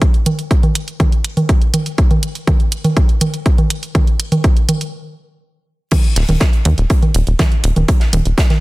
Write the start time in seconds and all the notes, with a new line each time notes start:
0.02 kick, closed hi-hat
0.14 closed hi-hat
0.26 closed hi-hat, low conga
0.39 closed hi-hat
0.51 kick, closed hi-hat
0.63 closed hi-hat, low conga
0.75 closed hi-hat
0.88 closed hi-hat
1.00 kick, closed hi-hat, low conga
1.12 closed hi-hat
1.24 closed hi-hat
1.37 closed hi-hat, low conga
1.49 kick, closed hi-hat
1.62 closed hi-hat
1.74 closed hi-hat, low conga
1.86 closed hi-hat
1.98 kick, closed hi-hat
2.11 closed hi-hat, low conga
2.23 closed hi-hat
2.35 closed hi-hat
2.47 kick, closed hi-hat, low conga
2.60 closed hi-hat
2.72 closed hi-hat
2.84 closed hi-hat, low conga
2.97 kick, closed hi-hat
3.09 closed hi-hat
3.21 closed hi-hat, low conga
3.34 closed hi-hat
3.46 kick, closed hi-hat
3.58 closed hi-hat, low conga
3.70 closed hi-hat
3.83 closed hi-hat
3.95 kick, closed hi-hat, low conga
4.07 closed hi-hat
4.20 closed hi-hat
4.32 closed hi-hat, low conga
4.44 kick, closed hi-hat
4.57 closed hi-hat
4.69 closed hi-hat, low conga
4.81 closed hi-hat
5.91 kick, closed hi-hat, crash, low conga
6.04 closed hi-hat
6.16 D#1, snare, closed hi-hat, open hi-hat
6.29 D#1, closed hi-hat, low conga
6.40 kick, snare, closed hi-hat
6.53 closed hi-hat
6.65 D#2, closed hi-hat, low conga
6.78 D#1, closed hi-hat
6.90 kick, closed hi-hat
7.02 closed hi-hat, low conga
7.14 D#1, closed hi-hat
7.27 D#1, closed hi-hat
7.39 kick, snare, closed hi-hat, low conga
7.52 closed hi-hat
7.64 D#1, closed hi-hat
7.76 D#1, closed hi-hat, low conga
7.88 kick, closed hi-hat
8.00 snare, closed hi-hat
8.13 D#1, closed hi-hat, low conga
8.25 D#1, closed hi-hat
8.38 kick, snare, closed hi-hat
8.50 snare, closed hi-hat, low conga